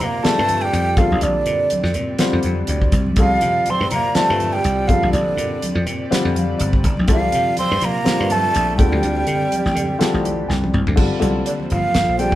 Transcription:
Already playing: analog synth pad A#2 F4 D5
0.00 slap bass C3, tenor saxophone A#3, flute A#5, closed hi-hat, high conga, low conga
0.23 grand piano D3 G3 C4 F4 A4, flute A5, muted slap bass stroke, snare, closed hi-hat
0.28 tenor saxophone A3
0.39 slap bass G2
0.48 closed hi-hat, high conga
0.62 flute G5
0.66 tenor saxophone G3
0.73 slap bass F2, closed hi-hat
0.97 slap bass A#1, grand piano D3 G3 C4 F4 A4, tenor saxophone F3, analog synth pad C4 G4, flute F5, kick, closed hi-hat, low conga
1.12 slap bass A#1, high conga
1.21 slap bass A#1, tenor saxophone D3, flute D5, closed hi-hat
1.46 slap bass A#2, closed hi-hat, low conga
1.70 closed hi-hat, high conga
1.83 slap bass F2, snare
1.94 slap bass A#2, closed hi-hat, high conga, low conga
2.19 grand piano D3 G3 C4 F4 C5, muted slap bass stroke, snare, closed hi-hat
2.33 slap bass F2
2.43 slap bass F2, closed hi-hat, high conga
2.67 slap bass D2, grand piano D5, closed hi-hat, low conga
2.82 kick
2.92 slap bass C2, kick, closed hi-hat, low conga
3.07 high conga
3.16 slap bass C2, analog synth pad A#2 F4, grand piano D3 G3 C4 F4 A4, flute F5, kick, closed hi-hat
3.21 tenor saxophone F3
3.41 slap bass C3, closed hi-hat, low conga
3.66 closed hi-hat, high conga
3.70 tenor saxophone C4, flute C6
3.81 slap bass G2
3.91 slap bass C3, tenor saxophone A#3, flute A#5, closed hi-hat, high conga, low conga
4.15 grand piano D3 G3 C4 F4 C5, flute A5, muted slap bass stroke, snare, closed hi-hat
4.20 tenor saxophone A3
4.30 slap bass G2
4.40 closed hi-hat, high conga
4.53 tenor saxophone G3, flute G5
4.64 slap bass C2, closed hi-hat
4.88 slap bass A#1, grand piano D3 G3 C4 F4 A4, tenor saxophone F3, analog synth pad C4 G4, flute F5, kick, closed hi-hat, low conga
5.03 slap bass A#1, high conga
5.12 slap bass A#1, tenor saxophone D3, flute D5, closed hi-hat
5.37 slap bass A#2, closed hi-hat, low conga
5.62 closed hi-hat, high conga
5.75 slap bass F2
5.86 slap bass A#2, closed hi-hat, low conga
6.10 grand piano D3 G3 C4 F4 C5, muted slap bass stroke, snare, closed hi-hat
6.25 slap bass F2
6.34 grand piano F5, closed hi-hat, high conga
6.59 slap bass G1, grand piano D5, closed hi-hat
6.73 kick
6.83 slap bass G1, kick, closed hi-hat, low conga
6.97 slap bass A#1, high conga
7.08 slap bass C2, analog synth pad A#2 F4, grand piano D3 G3 C4 F4 A4, kick, closed hi-hat
7.12 tenor saxophone F3, flute F5
7.32 slap bass C3, closed hi-hat, low conga
7.57 tenor saxophone C4, flute C6, closed hi-hat, high conga
7.71 slap bass G2
7.81 slap bass C3, tenor saxophone A#3, flute A#5, closed hi-hat, high conga
8.04 grand piano D3 G3 C4 F4 C5, muted slap bass stroke, snare, closed hi-hat
8.20 slap bass G2
8.30 tenor saxophone A3, flute A5, closed hi-hat, high conga
8.55 slap bass A#1, closed hi-hat
8.77 slap bass D2, grand piano D3 G3 C4 F4 A4, analog synth pad C4 G4, flute G5, kick, closed hi-hat, low conga
8.82 tenor saxophone G3
8.92 slap bass D2, high conga
9.03 slap bass D2, closed hi-hat
9.27 slap bass D3, closed hi-hat, low conga
9.52 closed hi-hat, high conga
9.66 slap bass A1, snare
9.75 slap bass D3, closed hi-hat, high conga, low conga
9.99 grand piano D3 G3 C4 F4 A4, muted slap bass stroke, snare, closed hi-hat
10.14 slap bass A1
10.24 grand piano D5, closed hi-hat, high conga
10.49 slap bass C2, grand piano G5, snare, low conga
10.62 high tom, high conga
10.74 slap bass C2, mid tom, low conga
10.87 slap bass D2, floor tom, high conga
10.95 slap bass G1, grand piano D3 G3 C4 F4 A4, analog synth pad A#3 F4 A4 C5, kick, crash
11.19 slap bass C2, grand piano D3 G3 C4 F4 A4, closed hi-hat, high conga
11.45 tenor saxophone D3, flute D5, closed hi-hat
11.60 high conga
11.70 slap bass G1, tenor saxophone F3, flute F5, closed hi-hat, low conga
11.85 high conga
11.94 slap bass G1, snare, closed hi-hat, high conga
12.08 slap bass A#1
12.18 grand piano D3 G3 C4 F4 A4, tenor saxophone G3, flute G5, closed hi-hat

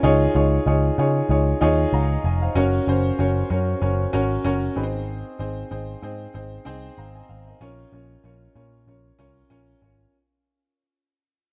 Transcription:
0.03 picked electric bass C#2, grand piano D#4 F4 G#4 C#5
0.35 picked electric bass C#2, grand piano D#4 F4 G#4 C#5
0.66 picked electric bass C#2, grand piano D#4 F4 G#4 C#5
0.98 picked electric bass C#3, grand piano D#4 F4 G#4 C#5
1.29 picked electric bass C#2, grand piano D#4 F4 G#4 C#5
1.61 picked electric bass D#2, grand piano D#4 F4 G#4 C#5
1.93 picked electric bass C#2, grand piano F5 A#5
2.24 picked electric bass F1, grand piano D#5 G#5
2.42 grand piano C5 F5
2.55 picked electric bass F#1, grand piano C#4 F#4 A#4 C#5
2.87 picked electric bass F#1, grand piano C#4 F#4 A#4 C5
3.19 picked electric bass F#1, grand piano C#4 F#4 A#4 C#5
3.50 picked electric bass F#2, grand piano C#4 F#4 A#4 C#5
3.81 picked electric bass F#1, grand piano C#4 F#4 A#4 C#5
4.13 picked electric bass G#1, grand piano C#4 F#4 A#4 C#5
4.44 picked electric bass F#1, grand piano C#4 F#4 A#4 C#5
4.76 picked electric bass G#1, grand piano C4 D#4 G#4 B4
4.83 grand piano C5
5.39 picked electric bass G#1, grand piano C4 D#4 G#4 C5
5.71 picked electric bass G#1, grand piano C4 D#4 G#4 C5
6.02 picked electric bass G#2, grand piano C4 D#4 G#4 C5
6.34 picked electric bass G#1, grand piano C4 D#4 G#4 C5
6.65 picked electric bass C2, grand piano C4 D#4 G#4 C5
6.98 picked electric bass G#1, grand piano F5 A#5
7.15 grand piano D#5 G#5
7.29 picked electric bass G#1, grand piano C5 F5
7.47 grand piano A#4 D#5
7.61 picked electric bass A#1, grand piano C#4 F4 A#4 C#5
7.92 picked electric bass A#1, grand piano C#4 F4 A#4 C#5
8.24 picked electric bass A#1, grand piano C#4 F4 A#4 C#5
8.55 picked electric bass A#2, grand piano C#4 F4 A#4 C#5
8.87 picked electric bass A#1, grand piano C#4 F4 A#4 C#5
9.19 picked electric bass C2, grand piano C#4 F4 A#4 C#5
9.50 picked electric bass A#1, grand piano C#4 F4 A#4 C#5
9.82 picked electric bass G#1, grand piano C#4 F4 A#4 C#5

